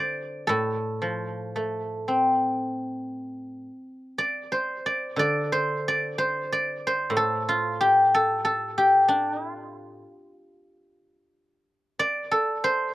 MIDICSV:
0, 0, Header, 1, 2, 480
1, 0, Start_track
1, 0, Tempo, 1048951
1, 1443, Tempo, 1020408
1, 1444, Time_signature, 4, 2, 24, 8
1, 2403, Tempo, 969305
1, 6239, End_track
2, 0, Start_track
2, 0, Title_t, "Guzheng"
2, 0, Program_c, 0, 107
2, 0, Note_on_c, 0, 50, 45
2, 0, Note_on_c, 0, 72, 63
2, 0, Note_on_c, 0, 74, 63
2, 0, Note_on_c, 0, 77, 50
2, 216, Note_on_c, 0, 69, 57
2, 224, Note_on_c, 0, 45, 49
2, 228, Note_off_c, 0, 50, 0
2, 267, Note_off_c, 0, 77, 0
2, 465, Note_on_c, 0, 53, 35
2, 712, Note_on_c, 0, 57, 34
2, 784, Note_off_c, 0, 72, 0
2, 834, Note_off_c, 0, 74, 0
2, 951, Note_on_c, 0, 60, 33
2, 1221, Note_off_c, 0, 69, 0
2, 1440, Note_off_c, 0, 53, 0
2, 1681, Note_off_c, 0, 45, 0
2, 1687, Note_off_c, 0, 57, 0
2, 1926, Note_off_c, 0, 60, 0
2, 1927, Note_on_c, 0, 74, 67
2, 2085, Note_on_c, 0, 72, 61
2, 2244, Note_off_c, 0, 74, 0
2, 2246, Note_on_c, 0, 74, 63
2, 2389, Note_on_c, 0, 50, 45
2, 2400, Note_off_c, 0, 74, 0
2, 2402, Note_on_c, 0, 74, 73
2, 2564, Note_off_c, 0, 72, 0
2, 2566, Note_on_c, 0, 72, 70
2, 2741, Note_off_c, 0, 74, 0
2, 2743, Note_on_c, 0, 74, 67
2, 2890, Note_off_c, 0, 72, 0
2, 2892, Note_on_c, 0, 72, 68
2, 3060, Note_off_c, 0, 74, 0
2, 3062, Note_on_c, 0, 74, 67
2, 3230, Note_off_c, 0, 72, 0
2, 3232, Note_on_c, 0, 72, 69
2, 3346, Note_on_c, 0, 45, 46
2, 3361, Note_off_c, 0, 50, 0
2, 3379, Note_on_c, 0, 69, 71
2, 3538, Note_on_c, 0, 65, 60
2, 3696, Note_on_c, 0, 67, 61
2, 3862, Note_off_c, 0, 69, 0
2, 3864, Note_on_c, 0, 69, 67
2, 3977, Note_off_c, 0, 74, 0
2, 4012, Note_off_c, 0, 69, 0
2, 4014, Note_on_c, 0, 69, 62
2, 4175, Note_off_c, 0, 67, 0
2, 4177, Note_on_c, 0, 67, 57
2, 4214, Note_off_c, 0, 72, 0
2, 4327, Note_off_c, 0, 65, 0
2, 4329, Note_on_c, 0, 62, 58
2, 4438, Note_off_c, 0, 62, 0
2, 4438, Note_on_c, 0, 63, 58
2, 4547, Note_off_c, 0, 63, 0
2, 4547, Note_on_c, 0, 65, 58
2, 4787, Note_off_c, 0, 45, 0
2, 5101, Note_off_c, 0, 69, 0
2, 5345, Note_off_c, 0, 67, 0
2, 5582, Note_off_c, 0, 65, 0
2, 5770, Note_on_c, 0, 74, 82
2, 5929, Note_on_c, 0, 69, 67
2, 6090, Note_on_c, 0, 72, 74
2, 6239, Note_off_c, 0, 69, 0
2, 6239, Note_off_c, 0, 72, 0
2, 6239, Note_off_c, 0, 74, 0
2, 6239, End_track
0, 0, End_of_file